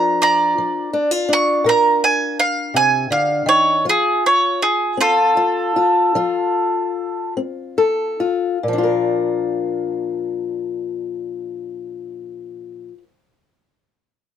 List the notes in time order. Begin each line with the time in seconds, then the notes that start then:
Already playing: A#2 F3 D4 F4 A#4 A#5
0.22 D5 A#5
0.58 F3
0.93 D4
1.11 F4
1.29 D4
1.33 C#6
1.64 A#2 A#4
1.69 A#5
2.04 G#5
2.40 F5
2.74 C3 G#5
3.10 D3 F5
3.46 D#3 C#5
3.85 F3 F4
3.89 G#4
4.26 C#5
4.62 G#4
4.97 C4 F4 A4
5.37 F4
5.76 F4
6.15 F3 F4
7.37 C4
7.78 A4
8.20 F4
8.63 A#2
8.68 F3
8.73 D4
8.78 F4
8.83 A#4